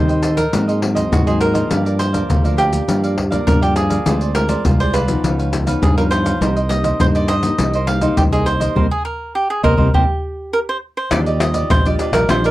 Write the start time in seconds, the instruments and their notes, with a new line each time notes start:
Already playing: nylon-string guitar A2 G3 C4 D#4, fingered electric bass D#3, cavaquinho C5
0.08 cavaquinho C5 D#5 G5, pandeiro, maracas
0.22 cavaquinho A4 C5 D#5 G5, pandeiro, maracas
0.37 cavaquinho A#4, pandeiro, maracas, surdo
0.53 nylon-string guitar G#2 F#3 A#3 C4, fingered electric bass G#2, cavaquinho F#4 G#4 C5 D#5, pandeiro, maracas, surdo
0.68 cavaquinho G#4 C5 D#5, pandeiro, maracas
0.81 nylon-string guitar F#3 A#3 C4, muted cavaquinho stroke, pandeiro
0.95 cavaquinho G#4 C5 D#5, pandeiro, maracas, surdo
1.12 fingered electric bass G#2, nylon-string guitar D#3, cavaquinho F#4, pandeiro, maracas, surdo
1.27 nylon-string guitar F#3 A#3 C4, cavaquinho G#4 C5 D#5, pandeiro, maracas
1.40 cavaquinho F#4 G#4 A#4 C5 D#5, pandeiro, maracas
1.53 nylon-string guitar F3 A#3 D4, cavaquinho G#4 C5 D#5, pandeiro, maracas, surdo
1.70 fingered electric bass G2, nylon-string guitar G2, cavaquinho G4 A#4 D5 F5, pandeiro, maracas, surdo
1.85 cavaquinho A#4 D5 F5, pandeiro, maracas
1.99 cavaquinho C5, muted cavaquinho stroke, pandeiro, maracas
2.13 nylon-string guitar F3 A#3 D4, cavaquinho A#4 D5 F5, pandeiro, maracas, surdo
2.29 fingered electric bass D2, nylon-string guitar D3, cavaquinho G4 A#4 D5 F5, pandeiro, maracas, surdo
2.44 nylon-string guitar F3 A#3 D4, cavaquinho A#4 D5 F5, pandeiro, maracas
2.57 cavaquinho G4 A#4 D5 F5, pandeiro, maracas
2.72 nylon-string guitar F3 A#3 D4, pandeiro, maracas, surdo
2.88 fingered electric bass G2, nylon-string guitar G2 F3 A#3 D4, cavaquinho G4 A#4 D5 F5, pandeiro, maracas, surdo
3.04 cavaquinho A#4 D5 F5, pandeiro, maracas
3.17 muted cavaquinho stroke, pandeiro, surdo
3.30 nylon-string guitar F3 A#3 D4, cavaquinho A#4 D5 F5, pandeiro, maracas, surdo
3.47 fingered electric bass G2, nylon-string guitar D3, cavaquinho A#4, pandeiro, maracas, surdo
3.61 nylon-string guitar F3 A#3 D4, cavaquinho G4 A#4 D5 F5, pandeiro, maracas
3.76 cavaquinho G4 G#4 A#4 D5 F5, pandeiro, maracas
3.90 cavaquinho A#4 D5 F5, pandeiro, maracas, surdo
4.06 fingered electric bass D2, nylon-string guitar D3 G#3 C4 F4, cavaquinho F4 G#4 C5 D5, pandeiro, maracas, surdo
4.21 cavaquinho G#4 C5 D5, pandeiro, maracas
4.35 nylon-string guitar G#3 C4 F4, cavaquinho A#4, muted cavaquinho stroke, pandeiro, maracas
4.49 cavaquinho G#4 C5 D5, pandeiro, maracas, surdo
4.65 fingered electric bass C2, nylon-string guitar D3 G#3 C4 F4, cavaquinho F4 G#4 C5 D5, pandeiro, maracas, surdo
4.80 cavaquinho G#4 C5 D5, pandeiro, maracas
4.93 cavaquinho F4 G#4 B4 C5 D5, pandeiro, maracas
5.08 nylon-string guitar F3 B3 D#4, pandeiro, maracas, surdo
5.24 fingered electric bass C#2, nylon-string guitar C#3, cavaquinho F4 B4 C#5 F5, pandeiro, maracas, surdo
5.39 cavaquinho B4 C#5 F5, pandeiro, maracas
5.52 nylon-string guitar F3 B3 D#4, muted cavaquinho stroke, pandeiro, maracas, surdo
5.66 nylon-string guitar F3 B3 D#4, cavaquinho B4 C#5 F5, pandeiro, maracas, surdo
5.82 fingered electric bass G2, cavaquinho G#4, pandeiro, maracas, surdo
5.97 nylon-string guitar F3 B3 D#4, cavaquinho A#4 B4 C#5 F5, pandeiro, maracas
6.11 cavaquinho F4 B4 C5 C#5 F5, pandeiro, maracas
6.24 cavaquinho B4 C#5 F5, pandeiro, maracas, surdo
6.41 fingered electric bass C2, nylon-string guitar C3 G3 A#3 D#4, cavaquinho D#4 A#4 C5 D#5, pandeiro, maracas, surdo
6.56 cavaquinho A#4 C5 D#5, pandeiro, maracas
6.69 nylon-string guitar G3 A#3 D#4, cavaquinho D#5, muted cavaquinho stroke, pandeiro, maracas
6.84 cavaquinho A#4 C5 D#5, pandeiro, maracas, surdo
6.99 fingered electric bass G2, nylon-string guitar G2 G3 A#3 D#4, cavaquinho D#4 A#4 C5 D#5, pandeiro, maracas, surdo
7.15 cavaquinho A#4 C5 D5 D#5, pandeiro, maracas
7.28 cavaquinho D#4 A#4 C5 D#5, pandeiro, maracas
7.43 nylon-string guitar G3 A#3 D#4, pandeiro, maracas, surdo
7.58 fingered electric bass C2, nylon-string guitar C3 G3 A#3 D#4, cavaquinho D#4 A#4 C5 D#5, pandeiro, maracas, surdo
7.74 cavaquinho A#4 C5 D#5, pandeiro, maracas
7.87 nylon-string guitar G3 A#3 D#4, cavaquinho F5, pandeiro
8.01 nylon-string guitar G3 A#3 D#4, cavaquinho A#4 C5 D#5, pandeiro, maracas, surdo
8.17 fingered electric bass C2, nylon-string guitar G2, cavaquinho G4, pandeiro, maracas, surdo
8.32 nylon-string guitar G3 A#3 D#4, cavaquinho G#4 A#4 C5 D#5, pandeiro, maracas
8.46 cavaquinho D#4 A#4 C5 D#5, pandeiro, maracas
8.60 cavaquinho A#4 C5 D#5, pandeiro, maracas, surdo
8.75 fingered electric bass C2, nylon-string guitar G3 A#3 C4, cavaquinho A#4 C5 D#5, surdo
8.91 cavaquinho G#4
9.05 cavaquinho A#4
9.35 cavaquinho G4
9.50 cavaquinho G#4
9.63 fingered electric bass C2, nylon-string guitar G3 A#3 C4, cavaquinho A#4 C5 D#5, surdo
9.77 fingered electric bass C2, nylon-string guitar G3 A#3 C4, cavaquinho A#4 C5 D#5, surdo
9.94 fingered electric bass C2, nylon-string guitar G3 A#3 C4, cavaquinho G4 A#4 C5 D#5, surdo
10.53 cavaquinho A#4
10.69 cavaquinho C5
10.97 cavaquinho C5
11.11 fingered electric bass D#2, nylon-string guitar D#3 G3 D4 F4, cavaquinho D4 G4 D5 D#5, pandeiro, tamborim, maracas, surdo
11.26 cavaquinho G4 D5 D#5, pandeiro, maracas
11.40 nylon-string guitar G3 D4 F4, cavaquinho D#5, muted cavaquinho stroke, pandeiro, tamborim, maracas
11.54 cavaquinho G4 D5 D#5, pandeiro, maracas, surdo
11.70 fingered electric bass A#1, nylon-string guitar A#2, cavaquinho D4 G4 C5 D5 D#5, pandeiro, tamborim, maracas, surdo
11.86 nylon-string guitar G3 D4 F4, cavaquinho G4 D5 D#5, pandeiro, maracas
11.99 cavaquinho D4 G4 D5 D#5, pandeiro, maracas
12.12 fingered electric bass A#1, nylon-string guitar G3 D4 F4, cavaquinho A#4, pandeiro, tamborim, maracas, surdo
12.29 fingered electric bass A#1, nylon-string guitar D#3 G3 D4 F4, cavaquinho D4 G4 C5 D5 D#5, pandeiro, tamborim, maracas, surdo
12.44 cavaquinho G4 A#4 D5 D#5, pandeiro, maracas